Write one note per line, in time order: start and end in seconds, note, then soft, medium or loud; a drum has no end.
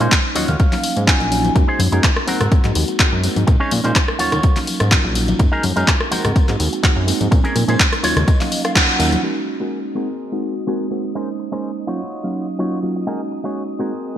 0.00 0.08 A#2 medium
0.00 0.33 G#3 medium
0.00 0.33 A#3 medium
0.00 0.18 C#4 medium
0.00 0.33 C#4 medium
0.00 0.33 D#4 medium
0.00 0.18 D#4 medium
0.00 0.18 G#4 medium
0.00 0.33 C5 medium
0.00 0.18 C5 medium
0.00 closed hi-hat soft
0.00 tambourine soft
0.12 kick loud
0.12 clap loud
0.12 closed hi-hat medium
0.24 tambourine soft
0.35 0.46 D#2 soft
0.35 0.47 F#3 medium
0.35 0.47 A#3 medium
0.35 0.48 C#4 medium
0.35 0.48 D#4 medium
0.35 0.75 F4 medium
0.35 0.48 F4 medium
0.35 0.75 F#4 medium
0.35 0.75 C#5 loud
0.35 0.47 D#5 medium
0.35 open hi-hat loud
0.35 tambourine medium
0.35 high conga medium
0.48 0.56 D#2 medium
0.48 0.58 F5 medium
0.48 closed hi-hat soft
0.48 tambourine soft
0.48 low conga medium
0.60 kick loud
0.60 closed hi-hat medium
0.60 tambourine soft
0.72 1.05 F#3 medium
0.72 1.05 A#3 medium
0.72 1.05 C#4 medium
0.72 1.05 D#4 medium
0.72 1.05 F5 loud
0.72 clap soft
0.72 open hi-hat medium
0.72 tambourine soft
0.72 high conga loud
0.83 muted clean electric guitar stroke soft
0.83 open hi-hat loud
0.83 tambourine medium
0.96 1.13 G#2 medium
0.96 muted clean electric guitar stroke soft
0.96 closed hi-hat soft
0.96 tambourine soft
1.07 1.29 F#3 loud
1.07 1.29 A#3 medium
1.07 1.29 C#4 medium
1.07 1.29 D#4 medium
1.07 1.29 F4 loud
1.07 1.52 G#5 medium
1.07 muted clean electric guitar stroke medium
1.07 kick loud
1.07 clap loud
1.07 closed hi-hat medium
1.07 tambourine soft
1.07 high conga medium
1.20 1.50 A#1 medium
1.20 muted clean electric guitar stroke soft
1.20 closed hi-hat soft
1.20 tambourine soft
1.31 1.53 F#3 medium
1.31 1.53 A#3 medium
1.31 1.53 C#4 medium
1.31 1.53 D#4 medium
1.31 1.53 F4 medium
1.31 open hi-hat loud
1.31 tambourine medium
1.44 muted clean electric guitar stroke soft
1.44 closed hi-hat soft
1.44 tambourine soft
1.44 high conga medium
1.55 1.64 F#2 loud
1.55 1.89 G#3 medium
1.55 1.89 A#3 medium
1.55 1.89 C#4 medium
1.55 1.90 F#4 medium
1.55 muted clean electric guitar stroke loud
1.55 kick loud
1.55 closed hi-hat medium
1.55 tambourine soft
1.68 1.80 D#4 loud
1.68 1.80 G#4 loud
1.68 1.80 C5 loud
1.68 tambourine soft
1.79 1.88 F#2 loud
1.79 open hi-hat loud
1.79 tambourine medium
1.79 high conga loud
1.92 2.00 F#2 loud
1.92 2.25 G#3 medium
1.92 2.25 A#3 medium
1.92 2.25 C#4 medium
1.92 2.10 D#4 medium
1.92 2.25 D#4 medium
1.92 2.25 F#4 medium
1.92 2.10 G#4 medium
1.92 2.10 A#4 medium
1.92 closed hi-hat soft
1.92 tambourine soft
2.04 kick loud
2.04 clap loud
2.04 closed hi-hat medium
2.04 tambourine soft
2.16 cross-stick medium
2.16 tambourine soft
2.27 2.40 G#3 medium
2.27 2.40 A#3 medium
2.27 2.67 C4 medium
2.27 2.40 C4 medium
2.27 2.40 D#4 medium
2.27 2.67 F#4 medium
2.27 2.40 F#4 medium
2.27 2.67 A#4 loud
2.27 open hi-hat loud
2.27 tambourine medium
2.27 high conga medium
2.40 2.48 G#2 medium
2.40 cross-stick medium
2.40 closed hi-hat medium
2.40 tambourine soft
2.40 low conga medium
2.52 2.62 G#2 soft
2.52 kick loud
2.52 closed hi-hat medium
2.52 tambourine medium
2.64 2.72 G#2 medium
2.64 2.97 G#3 medium
2.64 2.97 A#3 medium
2.64 2.97 C4 medium
2.64 2.97 D#4 medium
2.64 2.97 F#4 loud
2.64 clap soft
2.64 closed hi-hat soft
2.64 tambourine soft
2.64 high conga loud
2.75 2.84 D#2 loud
2.75 muted clean electric guitar stroke soft
2.75 open hi-hat loud
2.75 tambourine medium
2.88 muted clean electric guitar stroke soft
2.88 closed hi-hat soft
2.88 tambourine soft
2.99 3.21 G#3 loud
2.99 3.21 A#3 medium
2.99 3.21 C4 medium
2.99 3.21 D#4 medium
2.99 3.21 F#4 loud
2.99 muted clean electric guitar stroke medium
2.99 kick loud
2.99 clap loud
2.99 closed hi-hat medium
3.12 3.28 F#2 medium
3.12 muted clean electric guitar stroke soft
3.12 tambourine soft
3.23 3.45 G#3 medium
3.23 3.45 A#3 medium
3.23 3.45 C4 medium
3.23 3.45 D#4 medium
3.23 3.45 F#4 medium
3.23 open hi-hat loud
3.23 tambourine medium
3.36 3.44 G#2 medium
3.36 muted clean electric guitar stroke soft
3.36 closed hi-hat soft
3.36 tambourine soft
3.36 high conga medium
3.47 3.56 A#2 loud
3.47 3.81 G#3 medium
3.47 3.81 A#3 medium
3.47 3.81 C4 medium
3.47 3.81 C#4 medium
3.47 3.82 D#4 medium
3.47 muted clean electric guitar stroke loud
3.47 kick loud
3.47 closed hi-hat medium
3.47 tambourine soft
3.60 3.71 C#4 loud
3.60 3.71 D#4 loud
3.60 3.71 G#4 loud
3.60 3.72 C#5 loud
3.60 tambourine soft
3.71 3.81 A#2 loud
3.71 open hi-hat loud
3.71 tambourine loud
3.71 high conga medium
3.84 3.92 A#2 loud
3.84 4.17 G#3 medium
3.84 4.17 A#3 medium
3.84 4.02 C#4 medium
3.84 4.17 C#4 medium
3.84 4.02 D#4 medium
3.84 4.17 D#4 medium
3.84 4.02 G#4 medium
3.84 4.02 C5 loud
3.84 closed hi-hat medium
3.84 tambourine soft
3.95 kick loud
3.95 clap loud
3.95 closed hi-hat medium
3.95 tambourine medium
4.08 cross-stick medium
4.08 tambourine soft
4.19 4.30 D#2 soft
4.19 4.31 F#3 medium
4.19 4.31 A#3 medium
4.19 4.32 C#4 medium
4.19 4.32 D#4 medium
4.19 4.58 F4 medium
4.19 4.32 F4 medium
4.19 4.59 F#4 medium
4.19 4.59 C#5 loud
4.19 open hi-hat loud
4.19 tambourine medium
4.19 high conga medium
4.32 4.40 D#2 medium
4.32 cross-stick medium
4.32 closed hi-hat medium
4.32 tambourine soft
4.32 low conga medium
4.43 kick loud
4.43 closed hi-hat medium
4.43 tambourine medium
4.56 4.89 F#3 medium
4.56 4.89 A#3 medium
4.56 4.89 C#4 medium
4.56 4.89 D#4 medium
4.56 4.89 F5 loud
4.56 clap soft
4.56 open hi-hat medium
4.56 tambourine soft
4.56 high conga medium
4.67 muted clean electric guitar stroke soft
4.67 open hi-hat loud
4.67 tambourine medium
4.80 4.97 G#2 loud
4.80 muted clean electric guitar stroke soft
4.80 cross-stick medium
4.80 closed hi-hat medium
4.80 tambourine soft
4.91 5.13 F#3 loud
4.91 5.13 A#3 medium
4.91 5.13 C#4 medium
4.91 5.13 D#4 medium
4.91 5.13 F4 loud
4.91 muted clean electric guitar stroke medium
4.91 kick loud
4.91 clap loud
4.91 closed hi-hat medium
4.91 tambourine medium
4.91 high conga medium
5.04 5.34 A#1 medium
5.04 muted clean electric guitar stroke soft
5.04 tambourine soft
5.15 5.37 F#3 medium
5.15 5.37 A#3 medium
5.15 5.37 C#4 medium
5.15 5.37 D#4 medium
5.15 5.37 F4 medium
5.15 open hi-hat loud
5.15 tambourine medium
5.28 muted clean electric guitar stroke soft
5.28 closed hi-hat medium
5.28 tambourine soft
5.28 high conga medium
5.39 5.48 F#2 loud
5.39 5.73 G#3 medium
5.39 muted clean electric guitar stroke loud
5.39 kick loud
5.39 closed hi-hat medium
5.39 tambourine medium
5.52 5.63 D#4 loud
5.52 5.63 G#4 loud
5.52 5.64 A#4 loud
5.52 tambourine soft
5.63 5.73 F#2 loud
5.63 open hi-hat loud
5.63 tambourine loud
5.63 high conga loud
5.76 5.84 F#2 medium
5.76 6.09 G#3 medium
5.76 6.09 A#3 medium
5.76 6.09 C#4 medium
5.76 5.94 D#4 medium
5.76 6.09 D#4 medium
5.76 6.09 F#4 medium
5.76 5.94 G#4 medium
5.76 5.94 A#4 medium
5.76 closed hi-hat medium
5.76 tambourine soft
5.87 kick loud
5.87 clap loud
5.87 closed hi-hat medium
5.87 tambourine medium
6.00 cross-stick medium
6.00 tambourine soft
6.11 6.23 G#3 medium
6.11 6.24 A#3 medium
6.11 6.51 C4 medium
6.11 6.24 C4 medium
6.11 6.24 D#4 medium
6.11 6.51 F#4 medium
6.11 6.24 F#4 medium
6.11 6.51 A#4 loud
6.11 open hi-hat loud
6.11 tambourine medium
6.11 high conga medium
6.25 6.32 G#2 medium
6.25 cross-stick medium
6.25 closed hi-hat medium
6.25 tambourine soft
6.25 low conga medium
6.36 6.46 G#2 soft
6.36 kick loud
6.36 closed hi-hat medium
6.36 tambourine medium
6.47 6.56 G#2 medium
6.47 6.80 G#3 medium
6.47 6.81 A#3 medium
6.47 6.81 C4 medium
6.47 6.81 D#4 medium
6.47 6.81 F#4 loud
6.47 clap soft
6.47 closed hi-hat soft
6.47 tambourine soft
6.47 high conga medium
6.60 6.69 D#2 loud
6.60 muted clean electric guitar stroke soft
6.60 open hi-hat loud
6.60 tambourine medium
6.72 muted clean electric guitar stroke soft
6.72 closed hi-hat medium
6.72 tambourine soft
6.83 7.05 G#3 loud
6.83 7.05 A#3 medium
6.83 7.05 C4 medium
6.83 7.05 D#4 medium
6.83 7.05 F#4 loud
6.83 muted clean electric guitar stroke medium
6.83 kick loud
6.83 clap loud
6.83 closed hi-hat medium
6.83 tambourine soft
6.83 high conga medium
6.96 7.12 F#2 medium
6.96 muted clean electric guitar stroke soft
6.96 tambourine soft
7.07 7.29 G#3 medium
7.07 7.29 A#3 medium
7.07 7.29 C4 medium
7.07 7.29 D#4 medium
7.07 7.29 F#4 medium
7.07 open hi-hat loud
7.07 tambourine medium
7.20 7.28 G#2 medium
7.20 muted clean electric guitar stroke soft
7.20 closed hi-hat medium
7.20 tambourine soft
7.20 high conga medium
7.31 7.40 A#2 loud
7.31 7.65 G#3 medium
7.31 7.65 A#3 medium
7.31 7.65 C4 medium
7.31 7.65 C#4 medium
7.31 7.65 D#4 medium
7.31 muted clean electric guitar stroke loud
7.31 kick loud
7.31 closed hi-hat medium
7.31 tambourine medium
7.44 7.56 C#4 loud
7.44 7.56 D#4 loud
7.44 7.56 G#4 loud
7.44 7.56 A#4 loud
7.44 closed hi-hat soft
7.44 tambourine soft
7.56 7.64 A#2 loud
7.56 open hi-hat loud
7.56 tambourine medium
7.56 high conga medium
7.68 7.76 A#2 medium
7.68 8.01 G#3 medium
7.68 8.01 A#3 medium
7.68 7.86 C#4 medium
7.68 8.01 C#4 medium
7.68 7.86 D#4 medium
7.68 8.01 D#4 medium
7.68 7.86 G#4 medium
7.68 8.01 C5 medium
7.68 7.86 C5 medium
7.68 closed hi-hat medium
7.68 tambourine soft
7.80 kick loud
7.80 clap loud
7.80 closed hi-hat medium
7.93 cross-stick medium
7.93 closed hi-hat soft
7.93 tambourine soft
8.03 8.14 D#2 soft
8.03 8.15 F#3 medium
8.03 8.15 A#3 medium
8.03 8.15 C#4 medium
8.03 8.15 D#4 medium
8.03 8.16 F4 medium
8.03 8.43 F4 medium
8.03 8.43 F#4 medium
8.03 8.43 C#5 loud
8.03 open hi-hat loud
8.03 tambourine loud
8.03 high conga medium
8.16 8.24 D#2 medium
8.16 cross-stick medium
8.16 closed hi-hat medium
8.16 tambourine soft
8.16 low conga medium
8.28 kick loud
8.28 closed hi-hat medium
8.28 tambourine medium
8.40 8.73 F#3 medium
8.40 8.73 A#3 medium
8.40 8.73 C#4 medium
8.40 8.73 D#4 medium
8.40 8.73 F5 loud
8.40 clap soft
8.40 open hi-hat medium
8.40 tambourine soft
8.40 high conga medium
8.52 muted clean electric guitar stroke soft
8.52 open hi-hat loud
8.52 tambourine medium
8.64 8.75 F5 medium
8.64 muted clean electric guitar stroke soft
8.64 cross-stick medium
8.64 closed hi-hat medium
8.64 tambourine soft
8.75 8.97 F#3 loud
8.75 8.97 A#3 medium
8.75 8.97 C#4 medium
8.75 8.97 D#4 medium
8.75 8.97 F4 loud
8.75 9.20 F#5 medium
8.75 muted clean electric guitar stroke medium
8.75 kick loud
8.75 clap loud
8.75 closed hi-hat medium
8.75 tambourine medium
8.75 high conga medium
8.88 muted clean electric guitar stroke soft
8.88 closed hi-hat soft
8.88 tambourine soft
8.99 9.17 D#2 medium
8.99 9.21 F#3 medium
8.99 9.21 A#3 medium
8.99 9.21 C#4 medium
8.99 9.21 D#4 medium
8.99 9.21 F4 medium
8.99 open hi-hat loud
8.99 tambourine loud
9.12 muted clean electric guitar stroke soft
9.12 closed hi-hat medium
9.12 tambourine soft
9.12 high conga medium
9.23 9.57 G#3 medium
9.23 9.57 A#3 medium
9.23 9.57 C#4 medium
9.23 9.36 D#4 loud
9.23 9.57 D#4 medium
9.23 9.36 F#4 medium
9.23 9.37 G#4 medium
9.23 9.37 A#4 loud
9.23 14.18 D#6 medium
9.48 muted clean electric guitar stroke soft
9.60 9.93 G#3 medium
9.60 9.93 A#3 medium
9.60 9.93 C#4 medium
9.60 9.78 D#4 medium
9.60 9.93 D#4 medium
9.60 9.78 F#4 medium
9.60 9.93 F#4 medium
9.60 9.78 G#4 medium
9.60 9.78 A#4 medium
9.95 10.07 G#3 medium
9.95 10.08 A#3 medium
9.95 10.08 C4 medium
9.95 10.54 C4 medium
9.95 10.08 D#4 medium
9.95 10.54 F#4 medium
9.95 10.08 F#4 medium
9.95 10.54 G#4 medium
9.95 10.54 A#4 loud
10.32 10.65 G#3 medium
10.32 10.65 A#3 medium
10.32 10.65 C4 medium
10.32 10.65 D#4 medium
10.32 10.65 F#4 loud
10.67 10.89 G#3 medium
10.67 10.89 A#3 medium
10.67 10.86 C4 medium
10.67 10.89 C4 medium
10.67 10.89 D#4 medium
10.67 10.86 F#4 medium
10.67 10.89 F#4 loud
10.67 10.86 G#4 medium
10.67 10.86 A#4 medium
10.91 11.12 G#3 medium
10.91 11.13 A#3 medium
10.91 11.13 C4 medium
10.91 11.13 D#4 medium
10.91 11.13 F#4 medium
11.04 muted clean electric guitar stroke soft
11.15 11.49 G#3 medium
11.15 11.49 A#3 medium
11.15 11.28 C#4 loud
11.15 11.49 C#4 medium
11.15 11.28 D#4 medium
11.15 11.49 D#4 medium
11.15 11.28 G#4 loud
11.15 11.28 A#4 medium
11.15 11.49 C5 medium
11.15 11.29 C5 loud
11.39 muted clean electric guitar stroke soft
11.52 11.85 G#3 medium
11.52 11.85 A#3 medium
11.52 11.70 C#4 medium
11.52 11.85 C#4 medium
11.52 11.70 D#4 medium
11.52 11.85 D#4 medium
11.52 11.70 G#4 medium
11.52 11.70 A#4 medium
11.52 11.85 C5 medium
11.52 11.70 C5 medium
11.87 11.99 F#3 medium
11.87 11.99 A#3 medium
11.87 12.00 C#4 medium
11.87 12.46 D#4 medium
11.87 12.00 D#4 medium
11.87 12.46 F4 medium
11.87 12.00 F4 medium
11.87 12.46 F#4 medium
11.87 12.46 C#5 medium
12.23 12.56 F#3 medium
12.23 12.57 A#3 medium
12.23 12.57 C#4 medium
12.23 12.57 D#4 medium
12.23 12.57 F5 loud
12.59 12.81 F#3 medium
12.59 12.81 A#3 medium
12.59 12.81 C#4 medium
12.59 12.78 D#4 medium
12.59 12.81 D#4 medium
12.59 12.78 F4 medium
12.59 12.81 F4 loud
12.59 12.78 F#4 medium
12.59 12.78 C#5 medium
12.83 13.04 F#3 medium
12.83 13.05 A#3 medium
12.83 13.05 C#4 medium
12.83 13.05 D#4 medium
12.83 13.05 F4 medium
12.96 muted clean electric guitar stroke soft
13.07 13.41 G#3 medium
13.07 13.41 A#3 medium
13.07 13.41 C#4 medium
13.07 13.20 D#4 loud
13.07 13.41 D#4 medium
13.07 13.20 F#4 loud
13.07 13.41 F#4 medium
13.07 13.20 G#4 loud
13.07 13.20 A#4 loud
13.31 muted clean electric guitar stroke soft
13.43 13.77 G#3 medium
13.43 13.77 A#3 medium
13.43 13.77 C#4 medium
13.43 13.62 D#4 medium
13.43 13.77 D#4 medium
13.43 13.77 F#4 medium
13.43 13.62 F#4 medium
13.43 13.62 G#4 medium
13.43 13.62 C#5 medium
13.79 13.91 G#3 medium
13.79 13.91 A#3 medium
13.79 13.91 C4 medium
13.79 14.18 C4 medium
13.79 13.91 D#4 medium
13.79 13.92 F#4 medium
13.79 14.18 F#4 medium
13.79 14.18 G#4 medium
13.79 14.18 A#4 loud